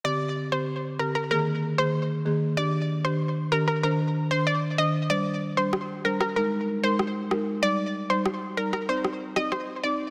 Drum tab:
SD |----------------|----------------|----r--r----r-r-|----r--r-r-rr---|